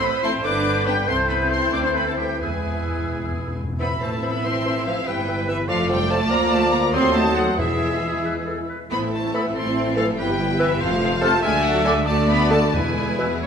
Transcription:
Already playing: A1 E3 A4 C5 E6
0.02 B3 B4 B5
0.22 A3 C4 E4 A4 C5 C6
0.44 G1 D3 D4 B4 D5 D6 G6
0.86 G3 B3 D4 G4 G5
1.07 C2 E3 C4 E4 A4 C5 C6
1.29 B3 B4 B5
1.51 C4 C5 C6
1.72 D2 D4 D5 D6
1.84 C4 C5 C6
1.95 B3 B4 B5
2.06 A3 A4 A5
2.17 G3 G4 G5
2.40 E2 G#3 B3 E4 G#4 B4 G#5 E6
2.49 E2
2.58 E2
2.66 E2
2.74 E2
2.82 E2
2.90 E2
2.98 E2
3.07 E2
3.15 E2
3.23 E2
3.32 E2
3.39 E2
3.47 E2
3.55 E2
3.64 E2
3.72 E2
3.79 A1 E3 B3 C4 E4 A4 C5 E5 B5 E6
4.00 E3 A3 C5 A5 E6
4.22 E3 B3 C5 B5 E6
4.44 E3 C4 C5 C6 E6
4.64 E3 C5 E6
4.86 E3 F3 C5 F5 E6
5.06 G1 E3 G3 B3 B4 G5 E6
5.27 E3 B4 E6
5.47 E3 B4 E5 E6
5.68 F1 F3 A3 F4 A4 C5 D5 F5 C6
5.89 F3 G3 A4 G5 C6
6.09 F3 A3 A4 A5 C6
6.30 D2 F3 A#3 F4 A#4 F5 A#5 D6
6.52 A3 A5
6.72 A#3 A#5
6.93 D#2 F#3 A3 C4 F#4 A4 C5 D#5 C6 D#6
7.14 A3 A5
7.36 F#3 F#5
7.58 E2 E3 G#3 E4 G#4 B4 E5 E6
8.25 B4
8.46 A4
8.69 B4
8.91 A1 A3 B3 E4 C5 B5
9.03 E3 C4 A4 E5
9.13 A3 E4 C5 A5
9.24 E3 C4 A4 E5
9.34 E3 A3 B3 E4 A4 C5 B5 E6
9.45 E3 C4 A4 E5
9.54 A1 A3 C4 E4 A4 C5 C6
9.65 E3 C4 A4 E5
9.76 A3 E4 C5
9.87 E3 C4 A4 E5
9.96 E3 F3 A3 E4 A4 C5 F5 E6
10.08 E3 C4 A4 E5
10.17 G1 E3 G3 B3 E4 G4 B4 G5
10.29 G3 G4 B4
10.39 E3 E4 G4 B4
10.50 G3 G4 B4
10.59 E3 E4 G4 B4 E5 E6
10.70 G3 G4 B4
10.80 F1 F3 A3 C4 F4 A4 C5 F5
10.91 A3 F4 A4 F5
11.02 C4 F4 A4 C5
11.12 A3 F4 A4 F5
11.21 C3 A3 C4 F4 A4 C5 A5 F6
11.33 A3 F4 A4 F5
11.42 D2 G#3 A3 D4 F#4 A4 D5 E5 G#5
11.64 F#3 F#5
11.84 D3 G#3 A4 G#5 D6
12.06 A3 D4 F#4 A4 D5 A5
12.29 B3 B5
12.51 D3 A3 A4 A5 D6
12.73 E2 E3 G#3 B3 E4 G#4 B4 G#5
13.19 B2 B4 E6
13.42 C#5

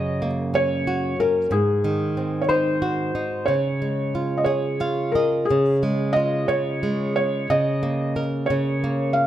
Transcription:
Already playing: F#2 C#3 D#5
0.22 A#3
0.54 C#4 C#5
0.87 F#4
1.20 C#4 A#4
1.51 G#2 G#4
1.84 D#3
2.17 C4
2.41 C#5
2.49 D#4 C5
2.82 F#4
3.15 D#4
3.46 C#3 C#5
3.82 G#3
4.15 F4
4.38 D#5
4.44 G#4 C#5
4.80 F4 F5
5.12 G#4 A#4 D#5
5.45 G#4
5.51 C#3
5.83 G#3
6.13 F4 D#5
6.48 C#3 C#5
6.83 G#3
7.16 C#5
7.50 C#3 D#5
7.83 A#3
8.16 A#4
8.46 C#5
8.50 C#3
8.84 A#3
9.13 F5

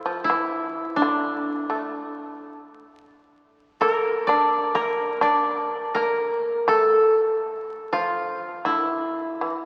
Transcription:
Already playing: F4 A4
0.06 F3
0.24 E4
0.30 E3
0.96 D4
1.02 D3
1.70 A3
3.81 A#3 A4
3.92 A#4
4.27 D4 D5
4.75 A#3 A#4
5.21 D4 D5
5.95 A#3 A#4
6.68 A3 A4
7.93 F3 F4
8.65 D3 E4
8.86 E3
9.41 E3

